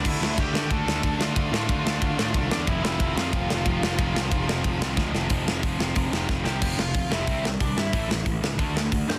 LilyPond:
<<
  \new Staff \with { instrumentName = "Lead electric guitar" } { \time 4/4 \key f \lydian \tempo 4 = 182 <e' e''>8 <e' e''>8 <g' g''>4 <a' a''>4. <f' f''>8~ | <f' f''>8 <f' f''>2. <d' d''>8 | <e' e''>8 <e' e''>4 <f' f''>2~ <f' f''>8~ | <f' f''>2. r4 |
r2. r8 <g' g''>8~ | <g' g''>8 <f' f''>4 <e' e''>4 <c' c''>8 <d' d''>8 <e' e''>8~ | <e' e''>8 r2. <c' c''>8 | }
  \new Staff \with { instrumentName = "Distorted electric guitar" } { \clef bass \time 4/4 \key f \lydian <d a d'>8 <d a d'>8 <d a d'>8 <d a d'>8 <d a d'>8 <d a d'>8 <d a d'>8 <d a d'>8 | <d a d'>8 <d a d'>8 <d a d'>8 <d a d'>8 <d a d'>8 <d a d'>8 <d a d'>8 <d a d'>8 | <f, c f>8 <f, c f>8 <f, c f>8 <f, c f>8 <f, c f>8 <f, c f>8 <f, c f>8 <f, c f>8 | <f, c f>8 <f, c f>8 <f, c f>8 <f, c f>8 <f, c f>8 <f, c f>8 <f, c f>8 <f, c f>8 |
<f, c f>8 <f, c f>8 <f, c f>8 <f, c f>8 <f, c f>8 <f, c f>8 <f, c f>8 <f, c f>8 | <f, c f>8 <f, c>8 <f, c>8 <f, c f>8 <c g c'>8 <c g>8 <c g>8 <c g>8 | <a, e a>8 <a, e>8 <a, e>8 <a, e>8 <d a d'>8 <d a>8 <d a>8 <d a>8 | }
  \new Staff \with { instrumentName = "Distorted electric guitar" } { \clef bass \time 4/4 \key f \lydian <d a d'>8 <d a d'>8 <d a d'>8 <d a d'>8 <d a d'>8 <d a d'>8 <d a d'>8 <d a d'>8 | <d a d'>8 <d a d'>8 <d a d'>8 <d a d'>8 <d a d'>8 <d a d'>8 <d a d'>8 <d a d'>8 | <f, c f>8 <f, c f>8 <f, c f>8 <f, c f>8 <f, c f>8 <f, c f>8 <f, c f>8 <f, c f>8 | <f, c f>8 <f, c f>8 <f, c f>8 <f, c f>8 <f, c f>8 <f, c f>8 <f, c f>8 <f, c f>8 |
<f, c f>8 <f, c f>8 <f, c f>8 <f, c f>8 <f, c f>8 <f, c f>8 <f, c f>8 <f, c f>8 | <f, c f>8 <f, c>8 <f, c>8 <f, c f>8 <c g c'>8 <c g>8 <c g>8 <c g>8 | <a, e a>8 <a, e>8 <a, e>8 <a, e>8 <d a d'>8 <d a>8 <d a>8 <d a>8 | }
  \new Staff \with { instrumentName = "Picked electric bass" } { \clef bass \time 4/4 \key f \lydian d,8 d,8 d,8 d8 d,8 d,8 d,8 d,8 | d,8 a,8 d,8 d,8 d,8 a,8 c,8 e,8 | f,,8 f,,8 f,,8 f,8 f,,8 f,,8 f,,8 f,,8 | f,,8 c,8 f,,8 f,,8 f,,8 c,8 d,8 f,,8 |
f,,8 f,,8 f,,8 f,,8 f,,8 f,,8 f,,8 c,8 | f,,8 f,,8 f,,8 f,,8 c,4 c,8 g,8 | a,,8 a,,8 a,,8 cis,8 d,4 d,8 g,8 | }
  \new DrumStaff \with { instrumentName = "Drums" } \drummode { \time 4/4 <cymc bd>8 sn8 <bd cymr>8 sn8 <bd cymr>8 sn8 <bd cymr>8 sn8 | <bd cymr>8 sn8 <bd cymr>8 sn8 <bd cymr>8 sn8 <bd cymr>8 sn8 | <bd cymr>8 sn8 <bd cymr>8 sn8 <bd cymr>8 sn8 <bd cymr>8 sn8 | <bd cymr>8 sn8 <bd cymr>8 sn8 <bd cymr>8 sn8 <bd sn>8 sn8 |
<hho bd>8 sn8 <hho bd>8 sn8 <hho bd>8 sn8 <bd sn>8 sn8 | <cymc bd>8 sn8 <hho bd>8 sn8 <hho bd>8 sn8 <hho bd>8 sn8 | <hho bd>8 sn8 <hho bd>8 sn8 <hho bd>8 sn8 <hho bd>8 sn8 | }
>>